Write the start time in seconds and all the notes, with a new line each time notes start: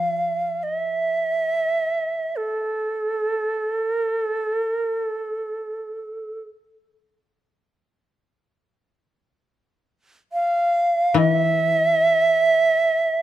Already playing: F3 A#3 F5
0.63 D#5
0.75 E5
2.36 A4
3.84 A#4
4.14 A4
4.65 A#4
4.96 A4
10.33 F5
11.14 E3 E5